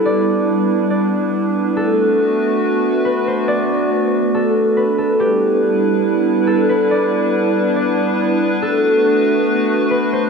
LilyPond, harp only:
\new Staff \with { instrumentName = "Harp" } { \time 4/4 \key e \minor \tempo 4 = 140 d''2 d''2 | a'2. b'8 c''8 | d''2 a'4 b'8 a'8 | g'2. a'8 b'8 |
d''2 d''2 | a'2. b'8 c''8 | }